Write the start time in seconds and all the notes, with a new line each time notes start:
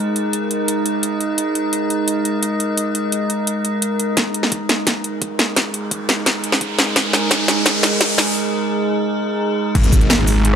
Already playing: G#3 D#4 A#4 D#5
0.16 closed hi-hat
0.33 closed hi-hat
0.51 closed hi-hat
0.68 closed hi-hat
0.86 closed hi-hat
1.03 closed hi-hat
1.20 closed hi-hat
1.38 closed hi-hat
1.55 closed hi-hat
1.73 closed hi-hat
1.90 closed hi-hat
2.08 closed hi-hat
2.25 closed hi-hat
2.43 closed hi-hat
2.60 closed hi-hat
2.77 closed hi-hat
2.95 closed hi-hat
3.12 closed hi-hat
3.30 closed hi-hat
3.47 closed hi-hat
3.65 closed hi-hat
3.82 closed hi-hat
4.00 closed hi-hat
4.17 G#3 D#4 G#4 A#4, kick, snare, closed hi-hat, riser
4.34 closed hi-hat
4.43 snare
4.52 kick, closed hi-hat
4.69 snare, closed hi-hat
4.87 kick, snare, closed hi-hat
5.04 closed hi-hat
5.22 kick, closed hi-hat
5.39 snare, closed hi-hat
5.56 kick, snare, closed hi-hat
5.74 closed hi-hat
5.91 kick, closed hi-hat
6.09 snare, closed hi-hat
6.26 kick, snare, closed hi-hat
6.44 closed hi-hat
6.52 snare
6.61 kick, closed hi-hat
6.79 snare, closed hi-hat
6.96 kick, snare, closed hi-hat
7.13 snare, closed hi-hat
7.31 kick, snare, closed hi-hat
7.48 snare, closed hi-hat
7.66 kick, snare, closed hi-hat
7.83 snare, closed hi-hat
8.01 kick, snare, closed hi-hat
8.18 snare, closed hi-hat
9.75 G#1 G#3 D#4 G#4 A#4, kick, closed hi-hat, crash, impact
9.84 closed hi-hat, cabasa
9.93 kick, closed hi-hat, cabasa
10.01 closed hi-hat
10.10 snare, closed hi-hat
10.27 open hi-hat, cabasa
10.45 closed hi-hat